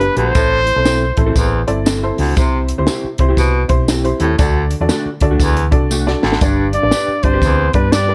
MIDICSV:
0, 0, Header, 1, 9, 480
1, 0, Start_track
1, 0, Key_signature, 1, "major"
1, 0, Tempo, 505348
1, 333, Time_signature, 4, 2, 24, 8
1, 7738, End_track
2, 0, Start_track
2, 0, Title_t, "Trumpet"
2, 0, Program_c, 0, 56
2, 0, Note_on_c, 0, 71, 99
2, 136, Note_off_c, 0, 71, 0
2, 172, Note_on_c, 0, 72, 117
2, 1565, Note_off_c, 0, 72, 0
2, 6403, Note_on_c, 0, 74, 98
2, 6870, Note_on_c, 0, 72, 88
2, 6884, Note_off_c, 0, 74, 0
2, 7348, Note_off_c, 0, 72, 0
2, 7354, Note_on_c, 0, 71, 89
2, 7523, Note_on_c, 0, 74, 104
2, 7537, Note_off_c, 0, 71, 0
2, 7738, Note_off_c, 0, 74, 0
2, 7738, End_track
3, 0, Start_track
3, 0, Title_t, "Upright piano"
3, 0, Program_c, 1, 0
3, 2, Note_on_c, 1, 62, 63
3, 8, Note_on_c, 1, 59, 69
3, 9, Note_on_c, 1, 67, 71
3, 9, Note_on_c, 1, 71, 78
3, 248, Note_off_c, 1, 62, 0
3, 251, Note_off_c, 1, 59, 0
3, 251, Note_off_c, 1, 67, 0
3, 252, Note_off_c, 1, 71, 0
3, 330, Note_on_c, 1, 45, 58
3, 331, Note_on_c, 1, 60, 63
3, 332, Note_on_c, 1, 64, 62
3, 333, Note_on_c, 1, 69, 64
3, 339, Note_on_c, 1, 72, 70
3, 639, Note_off_c, 1, 60, 0
3, 639, Note_off_c, 1, 64, 0
3, 640, Note_off_c, 1, 69, 0
3, 643, Note_off_c, 1, 72, 0
3, 719, Note_on_c, 1, 60, 81
3, 721, Note_on_c, 1, 64, 67
3, 722, Note_on_c, 1, 69, 74
3, 730, Note_on_c, 1, 72, 88
3, 970, Note_off_c, 1, 60, 0
3, 971, Note_off_c, 1, 64, 0
3, 971, Note_off_c, 1, 69, 0
3, 975, Note_off_c, 1, 72, 0
3, 1075, Note_off_c, 1, 45, 0
3, 1113, Note_on_c, 1, 64, 83
3, 1114, Note_on_c, 1, 60, 82
3, 1117, Note_on_c, 1, 69, 82
3, 1121, Note_on_c, 1, 72, 96
3, 1404, Note_off_c, 1, 64, 0
3, 1405, Note_off_c, 1, 60, 0
3, 1406, Note_off_c, 1, 69, 0
3, 1408, Note_off_c, 1, 72, 0
3, 1587, Note_on_c, 1, 60, 84
3, 1591, Note_on_c, 1, 64, 84
3, 1593, Note_on_c, 1, 74, 95
3, 1595, Note_on_c, 1, 69, 79
3, 1778, Note_off_c, 1, 60, 0
3, 1780, Note_off_c, 1, 64, 0
3, 1781, Note_off_c, 1, 74, 0
3, 1782, Note_off_c, 1, 69, 0
3, 1928, Note_on_c, 1, 60, 78
3, 1930, Note_on_c, 1, 64, 75
3, 1931, Note_on_c, 1, 69, 76
3, 1934, Note_on_c, 1, 72, 96
3, 2171, Note_off_c, 1, 60, 0
3, 2172, Note_off_c, 1, 64, 0
3, 2172, Note_off_c, 1, 69, 0
3, 2174, Note_off_c, 1, 72, 0
3, 2245, Note_on_c, 1, 64, 75
3, 2247, Note_on_c, 1, 60, 80
3, 2250, Note_on_c, 1, 67, 76
3, 2252, Note_on_c, 1, 48, 74
3, 2255, Note_on_c, 1, 72, 97
3, 2555, Note_off_c, 1, 64, 0
3, 2556, Note_off_c, 1, 60, 0
3, 2558, Note_off_c, 1, 67, 0
3, 2560, Note_off_c, 1, 72, 0
3, 2640, Note_on_c, 1, 64, 70
3, 2642, Note_on_c, 1, 60, 75
3, 2643, Note_on_c, 1, 72, 95
3, 2644, Note_on_c, 1, 67, 78
3, 2891, Note_off_c, 1, 64, 0
3, 2892, Note_off_c, 1, 60, 0
3, 2892, Note_off_c, 1, 67, 0
3, 2892, Note_off_c, 1, 72, 0
3, 2996, Note_off_c, 1, 48, 0
3, 3032, Note_on_c, 1, 60, 89
3, 3032, Note_on_c, 1, 64, 85
3, 3034, Note_on_c, 1, 67, 83
3, 3040, Note_on_c, 1, 72, 101
3, 3323, Note_off_c, 1, 64, 0
3, 3324, Note_off_c, 1, 60, 0
3, 3325, Note_off_c, 1, 67, 0
3, 3328, Note_off_c, 1, 72, 0
3, 3498, Note_on_c, 1, 60, 81
3, 3503, Note_on_c, 1, 64, 74
3, 3503, Note_on_c, 1, 67, 83
3, 3507, Note_on_c, 1, 72, 106
3, 3693, Note_off_c, 1, 60, 0
3, 3696, Note_off_c, 1, 64, 0
3, 3696, Note_off_c, 1, 67, 0
3, 3698, Note_off_c, 1, 72, 0
3, 3839, Note_on_c, 1, 60, 88
3, 3840, Note_on_c, 1, 64, 77
3, 3842, Note_on_c, 1, 67, 82
3, 3842, Note_on_c, 1, 72, 90
3, 4086, Note_off_c, 1, 60, 0
3, 4087, Note_off_c, 1, 64, 0
3, 4088, Note_off_c, 1, 67, 0
3, 4088, Note_off_c, 1, 72, 0
3, 4164, Note_on_c, 1, 62, 86
3, 4166, Note_on_c, 1, 66, 80
3, 4167, Note_on_c, 1, 69, 70
3, 4168, Note_on_c, 1, 50, 77
3, 4173, Note_on_c, 1, 74, 90
3, 4475, Note_off_c, 1, 62, 0
3, 4476, Note_off_c, 1, 66, 0
3, 4476, Note_off_c, 1, 69, 0
3, 4480, Note_off_c, 1, 74, 0
3, 4565, Note_on_c, 1, 66, 73
3, 4567, Note_on_c, 1, 62, 74
3, 4569, Note_on_c, 1, 69, 75
3, 4572, Note_on_c, 1, 74, 86
3, 4813, Note_off_c, 1, 66, 0
3, 4814, Note_off_c, 1, 62, 0
3, 4815, Note_off_c, 1, 69, 0
3, 4816, Note_off_c, 1, 74, 0
3, 4914, Note_off_c, 1, 50, 0
3, 4956, Note_on_c, 1, 62, 95
3, 4958, Note_on_c, 1, 66, 87
3, 4959, Note_on_c, 1, 69, 81
3, 4961, Note_on_c, 1, 74, 91
3, 5246, Note_off_c, 1, 62, 0
3, 5246, Note_off_c, 1, 66, 0
3, 5247, Note_off_c, 1, 69, 0
3, 5248, Note_off_c, 1, 74, 0
3, 5425, Note_on_c, 1, 62, 89
3, 5428, Note_on_c, 1, 66, 74
3, 5431, Note_on_c, 1, 69, 79
3, 5431, Note_on_c, 1, 74, 86
3, 5617, Note_off_c, 1, 62, 0
3, 5618, Note_off_c, 1, 66, 0
3, 5620, Note_off_c, 1, 69, 0
3, 5620, Note_off_c, 1, 74, 0
3, 5761, Note_on_c, 1, 62, 80
3, 5764, Note_on_c, 1, 66, 80
3, 5766, Note_on_c, 1, 74, 86
3, 5768, Note_on_c, 1, 69, 73
3, 6007, Note_off_c, 1, 62, 0
3, 6009, Note_off_c, 1, 66, 0
3, 6010, Note_off_c, 1, 74, 0
3, 6011, Note_off_c, 1, 69, 0
3, 6092, Note_on_c, 1, 62, 78
3, 6092, Note_on_c, 1, 67, 77
3, 6096, Note_on_c, 1, 43, 74
3, 6100, Note_on_c, 1, 71, 72
3, 6100, Note_on_c, 1, 74, 90
3, 6399, Note_off_c, 1, 62, 0
3, 6399, Note_off_c, 1, 67, 0
3, 6403, Note_off_c, 1, 71, 0
3, 6403, Note_off_c, 1, 74, 0
3, 6482, Note_on_c, 1, 62, 69
3, 6489, Note_on_c, 1, 67, 55
3, 6490, Note_on_c, 1, 71, 56
3, 6490, Note_on_c, 1, 74, 67
3, 6732, Note_off_c, 1, 62, 0
3, 6735, Note_off_c, 1, 67, 0
3, 6735, Note_off_c, 1, 71, 0
3, 6735, Note_off_c, 1, 74, 0
3, 6838, Note_off_c, 1, 43, 0
3, 6880, Note_on_c, 1, 67, 69
3, 6881, Note_on_c, 1, 62, 79
3, 6887, Note_on_c, 1, 74, 87
3, 7167, Note_off_c, 1, 67, 0
3, 7168, Note_off_c, 1, 62, 0
3, 7171, Note_off_c, 1, 74, 0
3, 7359, Note_on_c, 1, 62, 72
3, 7361, Note_on_c, 1, 67, 65
3, 7361, Note_on_c, 1, 71, 66
3, 7361, Note_on_c, 1, 74, 84
3, 7544, Note_off_c, 1, 62, 0
3, 7545, Note_off_c, 1, 67, 0
3, 7545, Note_off_c, 1, 71, 0
3, 7545, Note_off_c, 1, 74, 0
3, 7677, Note_on_c, 1, 62, 69
3, 7681, Note_on_c, 1, 67, 64
3, 7684, Note_on_c, 1, 71, 68
3, 7687, Note_on_c, 1, 74, 73
3, 7738, Note_off_c, 1, 62, 0
3, 7738, Note_off_c, 1, 67, 0
3, 7738, Note_off_c, 1, 71, 0
3, 7738, Note_off_c, 1, 74, 0
3, 7738, End_track
4, 0, Start_track
4, 0, Title_t, "Clean electric guitar"
4, 0, Program_c, 2, 27
4, 152, Note_on_c, 2, 62, 63
4, 158, Note_on_c, 2, 67, 59
4, 168, Note_on_c, 2, 71, 72
4, 231, Note_off_c, 2, 62, 0
4, 234, Note_off_c, 2, 67, 0
4, 239, Note_off_c, 2, 71, 0
4, 808, Note_on_c, 2, 60, 79
4, 819, Note_on_c, 2, 64, 89
4, 825, Note_on_c, 2, 69, 91
4, 978, Note_off_c, 2, 60, 0
4, 983, Note_off_c, 2, 64, 0
4, 987, Note_off_c, 2, 69, 0
4, 1200, Note_on_c, 2, 69, 65
4, 1208, Note_on_c, 2, 64, 56
4, 1217, Note_on_c, 2, 60, 50
4, 1280, Note_off_c, 2, 69, 0
4, 1284, Note_off_c, 2, 64, 0
4, 1288, Note_off_c, 2, 60, 0
4, 1767, Note_on_c, 2, 60, 84
4, 1776, Note_on_c, 2, 64, 87
4, 1782, Note_on_c, 2, 69, 96
4, 1938, Note_off_c, 2, 60, 0
4, 1942, Note_off_c, 2, 64, 0
4, 1945, Note_off_c, 2, 69, 0
4, 2730, Note_on_c, 2, 60, 90
4, 2741, Note_on_c, 2, 64, 102
4, 2748, Note_on_c, 2, 67, 105
4, 2899, Note_off_c, 2, 60, 0
4, 2904, Note_off_c, 2, 64, 0
4, 2908, Note_off_c, 2, 67, 0
4, 3121, Note_on_c, 2, 67, 58
4, 3133, Note_on_c, 2, 64, 56
4, 3137, Note_on_c, 2, 60, 46
4, 3200, Note_off_c, 2, 67, 0
4, 3206, Note_off_c, 2, 64, 0
4, 3208, Note_off_c, 2, 60, 0
4, 3691, Note_on_c, 2, 60, 78
4, 3700, Note_on_c, 2, 64, 91
4, 3708, Note_on_c, 2, 67, 95
4, 3860, Note_off_c, 2, 60, 0
4, 3864, Note_off_c, 2, 64, 0
4, 3868, Note_off_c, 2, 67, 0
4, 3994, Note_on_c, 2, 60, 65
4, 4002, Note_on_c, 2, 64, 62
4, 4010, Note_on_c, 2, 67, 75
4, 4072, Note_off_c, 2, 60, 0
4, 4076, Note_off_c, 2, 64, 0
4, 4080, Note_off_c, 2, 67, 0
4, 4647, Note_on_c, 2, 57, 86
4, 4657, Note_on_c, 2, 62, 89
4, 4664, Note_on_c, 2, 66, 88
4, 4817, Note_off_c, 2, 57, 0
4, 4822, Note_off_c, 2, 62, 0
4, 4826, Note_off_c, 2, 66, 0
4, 5042, Note_on_c, 2, 66, 54
4, 5051, Note_on_c, 2, 62, 56
4, 5058, Note_on_c, 2, 57, 50
4, 5120, Note_off_c, 2, 66, 0
4, 5125, Note_off_c, 2, 62, 0
4, 5129, Note_off_c, 2, 57, 0
4, 5612, Note_on_c, 2, 57, 81
4, 5622, Note_on_c, 2, 62, 85
4, 5628, Note_on_c, 2, 66, 93
4, 5780, Note_off_c, 2, 57, 0
4, 5785, Note_off_c, 2, 62, 0
4, 5788, Note_off_c, 2, 66, 0
4, 6573, Note_on_c, 2, 62, 81
4, 6583, Note_on_c, 2, 67, 96
4, 6592, Note_on_c, 2, 71, 98
4, 6740, Note_off_c, 2, 62, 0
4, 6745, Note_off_c, 2, 67, 0
4, 6750, Note_off_c, 2, 71, 0
4, 6968, Note_on_c, 2, 71, 56
4, 6979, Note_on_c, 2, 67, 53
4, 6986, Note_on_c, 2, 62, 49
4, 7044, Note_off_c, 2, 71, 0
4, 7049, Note_off_c, 2, 67, 0
4, 7052, Note_off_c, 2, 62, 0
4, 7536, Note_on_c, 2, 62, 87
4, 7547, Note_on_c, 2, 67, 101
4, 7553, Note_on_c, 2, 71, 96
4, 7702, Note_off_c, 2, 62, 0
4, 7707, Note_off_c, 2, 67, 0
4, 7711, Note_off_c, 2, 71, 0
4, 7738, End_track
5, 0, Start_track
5, 0, Title_t, "Vibraphone"
5, 0, Program_c, 3, 11
5, 6390, Note_on_c, 3, 62, 74
5, 6839, Note_off_c, 3, 62, 0
5, 6870, Note_on_c, 3, 60, 75
5, 7343, Note_on_c, 3, 59, 79
5, 7352, Note_off_c, 3, 60, 0
5, 7515, Note_off_c, 3, 59, 0
5, 7527, Note_on_c, 3, 62, 82
5, 7738, Note_off_c, 3, 62, 0
5, 7738, End_track
6, 0, Start_track
6, 0, Title_t, "Baritone saxophone"
6, 0, Program_c, 4, 67
6, 153, Note_on_c, 4, 38, 91
6, 296, Note_off_c, 4, 38, 0
6, 328, Note_on_c, 4, 45, 88
6, 571, Note_off_c, 4, 45, 0
6, 1286, Note_on_c, 4, 40, 78
6, 1530, Note_off_c, 4, 40, 0
6, 2073, Note_on_c, 4, 38, 87
6, 2217, Note_off_c, 4, 38, 0
6, 2252, Note_on_c, 4, 48, 78
6, 2493, Note_off_c, 4, 48, 0
6, 3210, Note_on_c, 4, 47, 93
6, 3452, Note_off_c, 4, 47, 0
6, 3989, Note_on_c, 4, 45, 98
6, 4134, Note_off_c, 4, 45, 0
6, 4161, Note_on_c, 4, 38, 85
6, 4407, Note_off_c, 4, 38, 0
6, 5128, Note_on_c, 4, 40, 91
6, 5371, Note_off_c, 4, 40, 0
6, 5905, Note_on_c, 4, 38, 91
6, 6051, Note_off_c, 4, 38, 0
6, 6095, Note_on_c, 4, 43, 79
6, 6335, Note_off_c, 4, 43, 0
6, 7056, Note_on_c, 4, 40, 81
6, 7296, Note_off_c, 4, 40, 0
6, 7738, End_track
7, 0, Start_track
7, 0, Title_t, "Fingered electric bass"
7, 0, Program_c, 5, 33
7, 159, Note_on_c, 5, 34, 76
7, 304, Note_off_c, 5, 34, 0
7, 336, Note_on_c, 5, 33, 100
7, 656, Note_off_c, 5, 33, 0
7, 724, Note_on_c, 5, 35, 81
7, 1046, Note_off_c, 5, 35, 0
7, 1117, Note_on_c, 5, 33, 85
7, 1263, Note_off_c, 5, 33, 0
7, 1289, Note_on_c, 5, 33, 89
7, 1539, Note_off_c, 5, 33, 0
7, 1599, Note_on_c, 5, 31, 82
7, 1992, Note_off_c, 5, 31, 0
7, 2077, Note_on_c, 5, 37, 78
7, 2223, Note_off_c, 5, 37, 0
7, 2255, Note_on_c, 5, 36, 100
7, 2575, Note_off_c, 5, 36, 0
7, 2648, Note_on_c, 5, 38, 86
7, 2720, Note_off_c, 5, 38, 0
7, 3032, Note_on_c, 5, 36, 87
7, 3180, Note_off_c, 5, 36, 0
7, 3202, Note_on_c, 5, 36, 86
7, 3454, Note_off_c, 5, 36, 0
7, 3510, Note_on_c, 5, 35, 83
7, 3907, Note_off_c, 5, 35, 0
7, 3991, Note_on_c, 5, 39, 81
7, 4140, Note_off_c, 5, 39, 0
7, 4170, Note_on_c, 5, 38, 93
7, 4493, Note_off_c, 5, 38, 0
7, 4563, Note_on_c, 5, 40, 82
7, 4637, Note_off_c, 5, 40, 0
7, 4955, Note_on_c, 5, 38, 80
7, 5102, Note_off_c, 5, 38, 0
7, 5126, Note_on_c, 5, 38, 86
7, 5435, Note_on_c, 5, 36, 80
7, 5449, Note_off_c, 5, 38, 0
7, 5830, Note_off_c, 5, 36, 0
7, 5922, Note_on_c, 5, 32, 76
7, 6066, Note_off_c, 5, 32, 0
7, 6094, Note_on_c, 5, 31, 91
7, 6415, Note_off_c, 5, 31, 0
7, 6489, Note_on_c, 5, 33, 87
7, 6560, Note_off_c, 5, 33, 0
7, 6877, Note_on_c, 5, 31, 89
7, 7023, Note_off_c, 5, 31, 0
7, 7046, Note_on_c, 5, 38, 82
7, 7297, Note_off_c, 5, 38, 0
7, 7355, Note_on_c, 5, 43, 85
7, 7738, Note_off_c, 5, 43, 0
7, 7738, End_track
8, 0, Start_track
8, 0, Title_t, "Muted fingered electric bass strokes"
8, 2889, Note_on_c, 9, 29, 49
8, 2984, Note_off_c, 9, 29, 0
8, 4804, Note_on_c, 9, 29, 47
8, 4899, Note_off_c, 9, 29, 0
8, 6726, Note_on_c, 9, 29, 46
8, 6821, Note_off_c, 9, 29, 0
8, 7738, End_track
9, 0, Start_track
9, 0, Title_t, "Drums"
9, 8, Note_on_c, 9, 42, 50
9, 103, Note_off_c, 9, 42, 0
9, 158, Note_on_c, 9, 42, 68
9, 253, Note_off_c, 9, 42, 0
9, 331, Note_on_c, 9, 54, 68
9, 333, Note_on_c, 9, 42, 97
9, 335, Note_on_c, 9, 36, 124
9, 426, Note_off_c, 9, 54, 0
9, 428, Note_off_c, 9, 42, 0
9, 430, Note_off_c, 9, 36, 0
9, 635, Note_on_c, 9, 42, 59
9, 730, Note_off_c, 9, 42, 0
9, 810, Note_on_c, 9, 54, 83
9, 812, Note_on_c, 9, 38, 106
9, 819, Note_on_c, 9, 42, 79
9, 905, Note_off_c, 9, 54, 0
9, 907, Note_off_c, 9, 38, 0
9, 914, Note_off_c, 9, 42, 0
9, 1110, Note_on_c, 9, 42, 64
9, 1117, Note_on_c, 9, 36, 87
9, 1205, Note_off_c, 9, 42, 0
9, 1212, Note_off_c, 9, 36, 0
9, 1288, Note_on_c, 9, 36, 89
9, 1288, Note_on_c, 9, 54, 69
9, 1299, Note_on_c, 9, 42, 84
9, 1383, Note_off_c, 9, 36, 0
9, 1383, Note_off_c, 9, 54, 0
9, 1394, Note_off_c, 9, 42, 0
9, 1592, Note_on_c, 9, 42, 60
9, 1687, Note_off_c, 9, 42, 0
9, 1768, Note_on_c, 9, 54, 107
9, 1773, Note_on_c, 9, 38, 117
9, 1777, Note_on_c, 9, 42, 82
9, 1863, Note_off_c, 9, 54, 0
9, 1868, Note_off_c, 9, 38, 0
9, 1872, Note_off_c, 9, 42, 0
9, 2073, Note_on_c, 9, 46, 53
9, 2168, Note_off_c, 9, 46, 0
9, 2249, Note_on_c, 9, 42, 102
9, 2251, Note_on_c, 9, 36, 114
9, 2253, Note_on_c, 9, 54, 73
9, 2344, Note_off_c, 9, 42, 0
9, 2346, Note_off_c, 9, 36, 0
9, 2348, Note_off_c, 9, 54, 0
9, 2550, Note_on_c, 9, 42, 66
9, 2645, Note_off_c, 9, 42, 0
9, 2723, Note_on_c, 9, 38, 107
9, 2730, Note_on_c, 9, 42, 75
9, 2730, Note_on_c, 9, 54, 96
9, 2818, Note_off_c, 9, 38, 0
9, 2825, Note_off_c, 9, 42, 0
9, 2825, Note_off_c, 9, 54, 0
9, 3022, Note_on_c, 9, 42, 64
9, 3031, Note_on_c, 9, 36, 82
9, 3117, Note_off_c, 9, 42, 0
9, 3126, Note_off_c, 9, 36, 0
9, 3203, Note_on_c, 9, 36, 84
9, 3210, Note_on_c, 9, 54, 71
9, 3212, Note_on_c, 9, 42, 75
9, 3298, Note_off_c, 9, 36, 0
9, 3305, Note_off_c, 9, 54, 0
9, 3307, Note_off_c, 9, 42, 0
9, 3506, Note_on_c, 9, 42, 57
9, 3511, Note_on_c, 9, 36, 84
9, 3601, Note_off_c, 9, 42, 0
9, 3606, Note_off_c, 9, 36, 0
9, 3686, Note_on_c, 9, 54, 105
9, 3689, Note_on_c, 9, 38, 115
9, 3693, Note_on_c, 9, 42, 89
9, 3781, Note_off_c, 9, 54, 0
9, 3784, Note_off_c, 9, 38, 0
9, 3788, Note_off_c, 9, 42, 0
9, 3844, Note_on_c, 9, 42, 49
9, 3939, Note_off_c, 9, 42, 0
9, 3987, Note_on_c, 9, 42, 77
9, 4082, Note_off_c, 9, 42, 0
9, 4165, Note_on_c, 9, 54, 72
9, 4168, Note_on_c, 9, 42, 96
9, 4170, Note_on_c, 9, 36, 122
9, 4260, Note_off_c, 9, 54, 0
9, 4263, Note_off_c, 9, 42, 0
9, 4265, Note_off_c, 9, 36, 0
9, 4469, Note_on_c, 9, 42, 57
9, 4564, Note_off_c, 9, 42, 0
9, 4645, Note_on_c, 9, 38, 102
9, 4647, Note_on_c, 9, 54, 94
9, 4651, Note_on_c, 9, 42, 68
9, 4740, Note_off_c, 9, 38, 0
9, 4742, Note_off_c, 9, 54, 0
9, 4746, Note_off_c, 9, 42, 0
9, 4943, Note_on_c, 9, 42, 68
9, 4952, Note_on_c, 9, 36, 83
9, 5038, Note_off_c, 9, 42, 0
9, 5047, Note_off_c, 9, 36, 0
9, 5125, Note_on_c, 9, 36, 87
9, 5129, Note_on_c, 9, 54, 72
9, 5138, Note_on_c, 9, 42, 70
9, 5220, Note_off_c, 9, 36, 0
9, 5224, Note_off_c, 9, 54, 0
9, 5233, Note_off_c, 9, 42, 0
9, 5286, Note_on_c, 9, 42, 55
9, 5381, Note_off_c, 9, 42, 0
9, 5432, Note_on_c, 9, 42, 53
9, 5434, Note_on_c, 9, 36, 93
9, 5527, Note_off_c, 9, 42, 0
9, 5529, Note_off_c, 9, 36, 0
9, 5611, Note_on_c, 9, 54, 103
9, 5706, Note_off_c, 9, 54, 0
9, 5770, Note_on_c, 9, 38, 56
9, 5865, Note_off_c, 9, 38, 0
9, 5918, Note_on_c, 9, 38, 91
9, 6007, Note_off_c, 9, 38, 0
9, 6007, Note_on_c, 9, 38, 86
9, 6089, Note_on_c, 9, 42, 91
9, 6092, Note_on_c, 9, 36, 119
9, 6094, Note_on_c, 9, 54, 72
9, 6102, Note_off_c, 9, 38, 0
9, 6184, Note_off_c, 9, 42, 0
9, 6187, Note_off_c, 9, 36, 0
9, 6189, Note_off_c, 9, 54, 0
9, 6393, Note_on_c, 9, 42, 58
9, 6488, Note_off_c, 9, 42, 0
9, 6567, Note_on_c, 9, 38, 96
9, 6571, Note_on_c, 9, 54, 98
9, 6574, Note_on_c, 9, 42, 69
9, 6662, Note_off_c, 9, 38, 0
9, 6666, Note_off_c, 9, 54, 0
9, 6669, Note_off_c, 9, 42, 0
9, 6867, Note_on_c, 9, 42, 59
9, 6874, Note_on_c, 9, 36, 85
9, 6962, Note_off_c, 9, 42, 0
9, 6969, Note_off_c, 9, 36, 0
9, 7046, Note_on_c, 9, 36, 83
9, 7053, Note_on_c, 9, 54, 66
9, 7056, Note_on_c, 9, 42, 76
9, 7141, Note_off_c, 9, 36, 0
9, 7148, Note_off_c, 9, 54, 0
9, 7151, Note_off_c, 9, 42, 0
9, 7347, Note_on_c, 9, 42, 59
9, 7353, Note_on_c, 9, 36, 83
9, 7442, Note_off_c, 9, 42, 0
9, 7448, Note_off_c, 9, 36, 0
9, 7526, Note_on_c, 9, 38, 111
9, 7530, Note_on_c, 9, 42, 87
9, 7530, Note_on_c, 9, 54, 109
9, 7621, Note_off_c, 9, 38, 0
9, 7625, Note_off_c, 9, 42, 0
9, 7625, Note_off_c, 9, 54, 0
9, 7738, End_track
0, 0, End_of_file